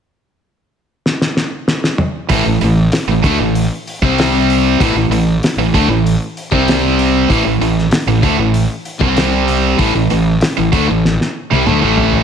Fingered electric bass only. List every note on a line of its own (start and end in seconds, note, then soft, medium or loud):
2.30 2.44 A1 medium
2.46 2.60 A1 medium
2.62 2.90 A1 medium
3.07 3.22 A1 medium
3.24 3.38 D2 medium
3.40 3.69 A1 medium
4.01 4.76 C2 medium
4.80 4.94 A1 medium
4.95 5.09 A1 medium
5.09 5.39 A1 medium
5.57 5.72 A1 medium
5.74 5.87 D2 medium
5.88 6.17 A1 medium
6.52 7.26 C2 medium
7.30 7.44 A1 medium
7.46 7.60 A1 medium
7.61 7.90 A1 medium
8.06 8.21 A1 medium
8.23 8.37 D2 medium
8.38 8.67 A1 medium
9.01 9.75 C2 medium
9.79 9.94 A1 medium
9.95 10.10 A1 medium
10.12 10.41 A1 medium
10.58 10.72 A1 medium
10.72 10.87 D2 medium
10.89 11.18 A1 medium
11.52 11.67 C2 medium
11.68 11.82 D2 medium
11.83 12.23 A1 medium